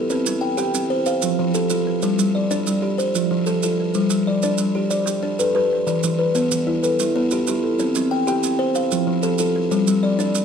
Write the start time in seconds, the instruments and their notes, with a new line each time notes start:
Already playing: kalimba E4 F4 G4 A4
0.10 kalimba C4 B4, maracas
0.26 kalimba C4, maracas
0.41 kalimba G5
0.57 kalimba G4 G5, maracas
0.74 kalimba C4, maracas
0.90 kalimba C5
1.06 kalimba C5 F5, maracas
1.22 kalimba F3 F4, maracas
1.39 kalimba F3
1.54 kalimba G4 A4, maracas
1.70 kalimba F4 A4, maracas
1.87 kalimba B4
2.02 kalimba G3 C5, maracas
2.19 kalimba G3, maracas
2.35 kalimba D5
2.51 kalimba D4 D5, maracas
2.67 kalimba G3, maracas
2.82 kalimba G4
2.98 kalimba C5, maracas
3.15 kalimba F3 F4, maracas
3.31 kalimba F3
3.46 kalimba G4 A4, maracas
3.63 kalimba F4 A4, maracas
3.80 kalimba B4
3.94 kalimba G3 C5, maracas
4.10 kalimba G3, maracas
4.27 kalimba D5
4.42 kalimba D4 D5, maracas
4.58 kalimba G3, maracas
4.75 kalimba G4
4.90 kalimba C5 D5, maracas
5.06 kalimba G4, maracas
5.23 kalimba D4
5.39 kalimba A4 B4, maracas
5.55 kalimba G4 B4
5.73 kalimba C5
5.87 kalimba E3 D5, maracas
6.03 kalimba E3, maracas
6.19 kalimba B4
6.35 kalimba B3 B4, maracas
6.51 kalimba E3, maracas
6.67 kalimba E4
6.83 kalimba A4 B4, maracas
6.99 kalimba E4, maracas
7.16 kalimba B3
7.31 kalimba F4 G4, maracas
7.47 kalimba E4 G4, maracas
7.64 kalimba A4
7.79 kalimba C4 B4, maracas
7.95 kalimba C4, maracas
8.11 kalimba G5
8.27 kalimba G4 G5, maracas
8.43 kalimba C4, maracas
8.59 kalimba C5
8.75 kalimba C5 F5, maracas
8.91 kalimba F3 F4, maracas
9.07 kalimba F3
9.23 kalimba G4 A4, maracas
9.38 kalimba F4 A4, maracas
9.56 kalimba B4
9.71 kalimba G3 C5, maracas
9.87 kalimba G3, maracas
10.03 kalimba D5
10.19 kalimba D4 D5, maracas
10.35 kalimba G3, maracas